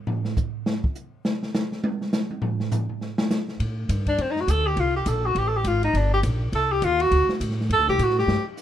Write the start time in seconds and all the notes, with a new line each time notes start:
0.07 floor tom
0.25 snare
0.37 kick, hi-hat pedal
0.66 snare
0.84 kick
0.95 hi-hat pedal
1.25 snare
1.43 snare
1.54 snare, hi-hat pedal
1.72 snare
1.84 high tom
2.01 snare
2.13 snare, hi-hat pedal
2.30 high tom
2.42 floor tom
2.60 snare
2.71 floor tom, hi-hat pedal
2.89 floor tom
3.01 snare
3.18 snare
3.30 snare, hi-hat pedal
3.48 snare
3.60 A2, kick, ride
3.89 G2, kick, hi-hat pedal, ride
4.06 D4, kick, ride
4.18 F#2 C4, kick, ride
4.31 D#4
4.36 snare
4.40 F#4
4.48 D2 A4, kick, hi-hat pedal, ride
4.67 G4
4.76 C2 F4, kick, ride
4.96 G4
5.06 A#1 A4, kick, hi-hat pedal, ride
5.26 F#4
5.35 A1 G4, kick, ride
5.48 A4
5.57 G4
5.64 G#1 F4, kick, hi-hat pedal, ride
5.83 D#4, ride
5.93 G1 D4, kick, ride
6.14 G4
6.23 A#1, kick, hi-hat pedal, ride
6.52 C2 A4, kick, ride
6.72 G4
6.82 D#2 F4, kick, hi-hat pedal, ride
7.00 F#4, ride
7.11 D2, kick, ride
7.27 muted upright bass stroke, snare
7.40 A2, kick, hi-hat pedal, ride
7.51 snare
7.61 snare
7.69 F#2 A4, kick, ride
7.79 D2
7.88 C2 G4, snare
7.99 A2, kick, hi-hat pedal, ride
8.03 F#4
8.10 snare
8.19 G4, snare
8.27 G2, snare
8.57 hi-hat pedal